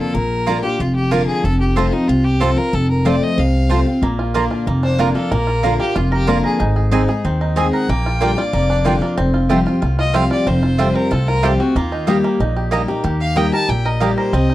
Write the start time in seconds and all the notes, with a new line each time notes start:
Already playing: F2 D3 A#3 D4 F4
0.00 A4
0.14 A#1 A#2 A#4
0.47 D3 A#3 D4 F4 D5 A#5
0.63 D4 F4 G4
0.79 F1 F2 F4
0.96 G4
1.11 D3 A#3 D4 F4 A#4 D5 A#5
1.27 G#4
1.44 F1 F2 A4
1.60 G4
1.76 F3 A3 C4 F4 C5 A5
1.92 C4 D#4 F4
2.08 C2 C3 F4
2.24 G4
2.40 F3 A3 C4 F4 A4 C5 A5
2.56 C4 F4 A#4
2.73 F1 F2 A4
2.91 A#4
3.05 F3 A3 C4 F4 C5 D5 A5
3.23 D#5
3.38 C2 C3 F5
3.69 F3 A3 C4 F4 C5 A5
3.86 C4 F4
4.02 A#1 A#2 A#3
4.19 F4
4.34 D3 A#3 D4 F4 D5 A#5
4.51 F4
4.67 F1 F2 A#3
4.83 D4 C5
4.98 D3 A#3 D4 F4 A#4 D5 A#5
5.15 A#3 D4 F4 A4
5.30 A#1 A#2 A#3 A#4
5.47 F4
5.63 D3 A#3 D4 F4 A#4 D5 A#5
5.79 A#3 D4 F4 G4
5.96 F1 F2 F4
6.12 G4 A#4
6.27 D3 A#3 D4 F4 A#4 D5 A#5
6.44 G#4 A#4
6.60 G#1 G#2 D#4
6.76 G#4
6.91 G#3 C4 D#4 G#4 D#5 G#5
7.08 D#4 G#4
7.25 D#2 D#3 C4
7.41 D#4
7.56 G#3 C4 D#4 G#4 D#5 G#5
7.73 A#4 F#5
7.89 A#1 A#2 A#3 G5
8.06 F4
8.20 D3 G3 A#3 D4 F4 D5 G5
8.37 D4 F4 D5
8.53 F1 F2 A#3
8.70 D4
8.85 D3 G3 A#3 D4 F4 D5 G5
9.01 A#3 D4 F4
9.18 F1 F2 C4
9.34 F4
9.49 F3 G3 A3 C4 F4 G4 C5 G5
9.66 C4 F4 G4
9.82 C2 A2 F4
9.99 F4 D#5
10.14 F3 G3 A3 C4 F4 G4 C5 F5 G5
10.31 F4 D5
10.47 F1 F2 C4 C5
10.63 F4
10.78 F3 G3 A3 C4 F4 G4 C5 G5
10.95 C4 A#4
11.11 C2 A2 F4 A4
11.28 F4 A#4
11.43 F3 G3 A3 C4 F4 G4 C5 G5
11.60 C4 F#4 G4
11.76 D#2 D#3 A#3 F4
11.92 D#4
12.07 G3 A#3 D#4 G4 D#5 A#5
12.24 A#3
12.40 A#1 A#2 D#4
12.56 G4
12.71 G3 A#3 D#4 G4 A#4 D#5 A#5
12.88 A#3 D#4 G4
13.04 D#2 D#3 G4
13.21 F5
13.36 G3 A#3 D#4 G4 D#5 G5 A#5
13.53 D#4 G4 A#4 A5
13.69 A#1 A#2 G4 G5
13.85 A#4 D#5
14.00 G3 A#3 D#4 G4 D5 D#5 A#5
14.17 A#4 C5
14.33 C2 C3 C4 D#5
14.50 D#4